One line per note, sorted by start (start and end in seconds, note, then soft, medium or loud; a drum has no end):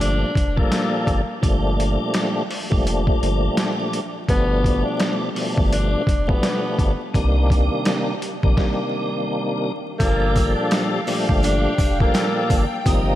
0.00 0.24 G1 medium
0.00 0.31 A#2 medium
0.00 0.31 F3 medium
0.00 0.31 G3 medium
0.00 0.31 A3 medium
0.00 0.32 D4 loud
0.00 0.54 D4 loud
0.00 closed hi-hat medium
0.35 0.63 F1 loud
0.35 kick medium
0.35 closed hi-hat medium
0.56 1.21 A#2 medium
0.56 1.21 F3 medium
0.56 1.21 G3 medium
0.56 1.39 A#3 medium
0.56 1.22 D4 loud
0.56 1.21 A4 medium
0.56 kick loud
0.72 snare loud
0.72 closed hi-hat loud
1.07 1.24 G1 medium
1.07 kick loud
1.07 closed hi-hat medium
1.41 1.97 G1 loud
1.41 2.42 A#2 medium
1.41 2.43 F3 medium
1.41 2.43 G3 medium
1.41 2.43 A3 medium
1.41 2.43 D4 loud
1.41 kick loud
1.41 closed hi-hat medium
1.80 closed hi-hat medium
2.14 snare loud
2.14 closed hi-hat loud
2.51 open hi-hat medium
2.70 3.10 F1 medium
2.70 4.00 A#2 medium
2.70 4.00 F3 medium
2.70 4.00 G3 medium
2.70 4.00 A3 medium
2.70 4.00 D4 loud
2.70 kick loud
2.87 closed hi-hat medium
3.07 kick medium
3.22 3.49 G1 medium
3.22 closed hi-hat medium
3.57 snare loud
3.57 closed hi-hat loud
3.93 closed hi-hat medium
4.29 4.83 G1 loud
4.29 5.29 B2 medium
4.29 5.29 F3 medium
4.29 5.29 G3 medium
4.29 5.30 A3 medium
4.29 4.83 B3 loud
4.29 5.30 D4 loud
4.29 kick loud
4.29 closed hi-hat medium
4.64 kick medium
4.64 closed hi-hat medium
4.85 5.17 D4 medium
5.00 snare loud
5.00 closed hi-hat loud
5.35 6.02 B2 loud
5.35 6.02 F3 medium
5.35 6.02 G3 medium
5.35 6.03 A3 medium
5.35 6.03 D4 loud
5.35 open hi-hat medium
5.58 5.96 G1 medium
5.58 kick loud
5.72 6.26 D4 medium
5.72 closed hi-hat medium
6.07 6.34 F1 medium
6.07 kick medium
6.07 closed hi-hat medium
6.27 6.92 B2 medium
6.27 6.92 F3 medium
6.27 6.93 G3 medium
6.27 6.93 A3 medium
6.27 7.10 B3 medium
6.27 6.93 D4 loud
6.27 kick loud
6.43 snare loud
6.43 closed hi-hat loud
6.79 6.95 G1 loud
6.79 kick loud
6.79 closed hi-hat medium
7.13 7.69 C2 loud
7.13 8.14 C3 medium
7.13 8.14 D#3 medium
7.13 8.14 G3 medium
7.13 8.15 A#3 medium
7.13 8.15 D4 loud
7.13 kick loud
7.13 closed hi-hat medium
7.50 kick medium
7.50 closed hi-hat medium
7.85 snare loud
7.85 closed hi-hat loud
8.22 closed hi-hat medium
8.42 8.54 A#1 medium
8.42 9.72 C3 medium
8.42 9.72 D#3 medium
8.42 9.72 G3 medium
8.42 9.72 A#3 medium
8.42 9.72 D4 medium
8.42 kick loud
8.57 kick loud
8.57 snare medium
9.99 10.54 G1 loud
9.99 11.00 A#2 loud
9.99 11.00 F3 medium
9.99 11.00 G3 medium
9.99 10.53 A#3 loud
9.99 11.01 D4 loud
9.99 12.83 G4 medium
9.99 11.01 A4 medium
9.99 12.83 F5 medium
9.99 13.15 G5 medium
9.99 kick loud
9.99 closed hi-hat loud
9.99 sleigh bells soft
10.35 kick medium
10.35 closed hi-hat medium
10.35 sleigh bells medium
10.55 10.88 D4 medium
10.71 snare loud
10.71 closed hi-hat loud
10.71 sleigh bells soft
11.06 11.74 A#2 medium
11.06 11.74 F3 medium
11.06 11.74 G3 medium
11.06 11.74 A3 medium
11.06 11.74 D4 loud
11.06 open hi-hat medium
11.06 sleigh bells medium
11.29 11.67 G1 loud
11.29 kick loud
11.43 11.97 D4 medium
11.43 closed hi-hat medium
11.43 sleigh bells medium
11.78 12.06 F1 medium
11.78 kick medium
11.78 closed hi-hat medium
11.78 sleigh bells medium
12.00 12.65 A#2 loud
12.00 12.65 F3 medium
12.00 12.65 G3 medium
12.00 12.82 A#3 medium
12.00 12.65 D4 loud
12.00 12.65 A4 medium
12.00 kick loud
12.14 snare loud
12.14 closed hi-hat loud
12.14 sleigh bells soft
12.50 12.67 G1 loud
12.50 kick loud
12.50 closed hi-hat medium
12.50 sleigh bells medium
12.85 13.15 G1 loud
12.85 13.15 C3 medium
12.85 13.15 F3 medium
12.85 13.15 G3 medium
12.85 13.15 A#3 medium
12.85 13.15 D#4 loud
12.85 13.15 F4 medium
12.85 13.15 D#5 medium
12.85 kick loud
12.85 closed hi-hat medium
12.85 sleigh bells soft